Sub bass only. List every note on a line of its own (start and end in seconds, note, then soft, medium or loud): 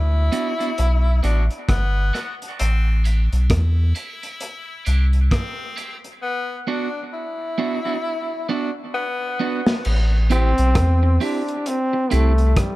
0.00 0.30 D2 medium
0.79 1.22 B1 loud
1.24 1.49 A1 loud
1.69 2.12 G1 medium
2.61 3.29 A1 medium
3.33 3.50 B1 medium
3.50 3.93 E2 medium
4.87 5.30 C2 loud
9.86 10.54 A1 loud
10.59 10.76 B1 loud
10.76 11.19 E2 loud
12.13 12.55 C2 loud